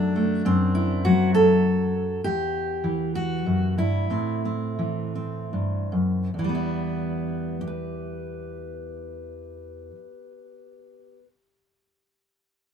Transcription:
Already playing: F#2 F#3 A3 D4
0.16 A3
0.45 F#2 C4
0.75 E4
1.05 F#3 F#4
1.34 A4
2.24 E2 G4
2.84 E3
3.15 F#4
3.46 F#2
3.78 G2 E4
4.10 A2 C4
4.45 C4
4.79 E3
5.15 C4
5.53 G2
5.92 F#2
6.34 E2
6.39 E3
6.44 G3
6.49 B3
6.55 E4
7.61 G4
7.67 B4

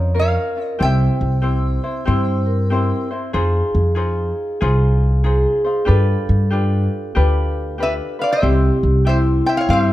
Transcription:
Already playing: F2 C#4 F4 A#4 C5 C#5 D#5
0.14 C#4 F4 A#4
0.19 C#5 F5
0.57 C#4 F4
0.63 D#5
0.79 C2 C4 E4 G4 C5 G5
0.85 E5
1.21 C2
1.42 C4 E4 G4 C5
1.84 C4 E4 C5
2.05 G2 C4 E4 G4 C5
2.46 A#4
2.70 C4 E4 G4 C5
3.11 C4 E4 C5
3.33 F2 D#4 F4 G#4 C5
3.75 F2
3.95 D#4 F4 G#4 C5
4.61 C2 D#4 F4 G#4 C5
5.24 D#4 F4 G#4 C5
5.64 D#4 F4 C5
5.85 G2 D4 F4 G4 A4 B4
6.29 G2
6.51 D4 F4 G4 B4
7.15 D2 D4 F4 G4 B4
7.78 D4 F4 G4 B4
7.83 B4 E5
8.19 D4 F4 B4 F5
8.23 D5
8.32 C5 E5
8.42 C2 C4 E4 G4 C5
8.83 C2
9.05 C4 E4 G4 C5 E5
9.09 C5
9.46 C4 E4 C5 E5 G5
9.57 C#5 F5
9.69 G2 C4 E4 G4 C5 F5
9.73 C5
9.81 E5

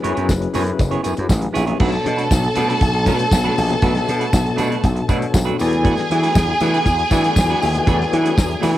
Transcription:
0.02 F#2 F#3 B3 C#4 E4 G#4 B4 C#5, closed hi-hat, high conga
0.15 F#2 B3 E4 G#4 C#5, closed hi-hat
0.29 F#1, kick, snare, tambourine, muted conga, high conga
0.41 muted clean electric guitar stroke, closed hi-hat
0.53 F#2 F#3 B3 C#4 E4 G#4 A4 C#5, open hi-hat, tambourine, muted conga, high conga, low conga
0.61 B4
0.65 muted clean electric guitar stroke, closed hi-hat
0.79 F#1, muted clean electric guitar stroke, kick, closed hi-hat, tambourine
0.91 B3 E4 G#4 C#5, closed hi-hat
1.03 F#2 B3 E4 G#4 C#5, closed hi-hat, tambourine, muted conga, high conga
1.17 F#2, closed hi-hat, high conga
1.29 A1, muted clean electric guitar stroke, kick, snare, tambourine, muted conga
1.41 muted clean electric guitar stroke, closed hi-hat, high conga
1.53 A#1 B3 E4 G#4 C#5, closed hi-hat, tambourine, muted conga
1.66 B3 E4 G#4 C#5, closed hi-hat, low conga
1.79 B1 B2 A3 B3 D4 F#4 A4 B4 C5 A5, kick, crash, muted conga
1.87 C#5
1.92 muted clean electric guitar stroke, closed hi-hat
2.04 B2, muted clean electric guitar stroke, closed hi-hat, high conga
2.17 A3 D4 F#4 B4, closed hi-hat
2.30 B1, muted clean electric guitar stroke, kick, snare, tambourine, high conga
2.44 muted clean electric guitar stroke, closed hi-hat
2.55 B2 A3 D4 F#4 B4, closed hi-hat, tambourine, high conga, low conga
2.69 A3 D4 F#4 B4, closed hi-hat
2.81 B1, kick, closed hi-hat, tambourine
2.93 muted clean electric guitar stroke, closed hi-hat
3.06 B2 A3 B3 D4 F#4 A4 B4 C#5, kick, closed hi-hat, tambourine, muted conga, high conga
3.19 muted clean electric guitar stroke, closed hi-hat, high conga
3.31 B1, kick, snare, tambourine
3.44 A3 D4 F#4 B4, closed hi-hat, high conga
3.57 A#1 B2 B3 D4 A4 C#5, muted clean electric guitar stroke, open hi-hat, tambourine, muted conga
3.70 muted clean electric guitar stroke, closed hi-hat, low conga
3.82 B1 B2 A3 B3 D4 F#4 A4 B4 E5, kick, closed hi-hat, tambourine
3.95 muted clean electric guitar stroke, snare, closed hi-hat
4.07 B2, muted clean electric guitar stroke, closed hi-hat, tambourine, high conga
4.20 A3 D4 F#4 B4, closed hi-hat
4.33 B1, kick, snare, tambourine, high conga
4.45 muted clean electric guitar stroke, closed hi-hat
4.56 B2 A3 D4 F#4 B4, closed hi-hat, tambourine, high conga, low conga
4.70 A3 D4 F#4 B4, closed hi-hat
4.84 B1, kick, closed hi-hat, tambourine
4.96 muted clean electric guitar stroke, closed hi-hat
5.09 B2 A3 B3 D4 F#4 A4 B4 C#5, kick, closed hi-hat, tambourine, muted conga, high conga
5.20 muted clean electric guitar stroke, closed hi-hat, high conga
5.33 B1, muted clean electric guitar stroke, kick, snare, tambourine
5.45 A3 D4 F#4 B4, closed hi-hat, high conga
5.59 E2 E3 B3 F#4 G#4 A4 D5 G#5, muted clean electric guitar stroke, open hi-hat, tambourine, muted conga
5.72 muted clean electric guitar stroke, closed hi-hat, low conga
5.84 A3 D4 F#4 B4, kick, closed hi-hat, muted conga
5.97 muted clean electric guitar stroke, snare, closed hi-hat
6.10 E3, muted clean electric guitar stroke, closed hi-hat, high conga
6.23 A3 D4 F#4 B4, closed hi-hat
6.35 E2, kick, snare, tambourine, high conga
6.50 muted clean electric guitar stroke
6.61 E3 A3 D4 F#4 B4, closed hi-hat, tambourine, muted conga, high conga, low conga
6.74 A3 D4 F#4 B4, closed hi-hat
6.86 E2, kick, closed hi-hat, tambourine
6.99 muted clean electric guitar stroke, closed hi-hat
7.10 E3 A3 B3 D4 F#4 A4 B4 D5, kick, closed hi-hat, tambourine, muted conga, high conga
7.24 A3 D4 F#4 B4, closed hi-hat, high conga
7.36 E2, muted clean electric guitar stroke, kick, snare, tambourine
7.49 A3 D4 F#4 B4, closed hi-hat, high conga
7.61 D#2 E3 B3 F#4 A4 E5, open hi-hat, tambourine, muted conga
7.75 muted clean electric guitar stroke, closed hi-hat, low conga
7.87 E2 E3 A3 B3 D4 F#4 A4 B4 C#5, kick, closed hi-hat, tambourine, muted conga
7.94 D5
8.00 muted clean electric guitar stroke, snare
8.12 E3, muted clean electric guitar stroke, closed hi-hat, muted conga, high conga
8.23 A3 D4 F#4 B4, closed hi-hat
8.36 E2, muted clean electric guitar stroke, kick, snare, tambourine, muted conga, high conga
8.48 muted clean electric guitar stroke, closed hi-hat
8.61 E3 A3 D4 F#4 B4, open hi-hat, tambourine, muted conga, high conga, low conga
8.74 D4 F#4 B4

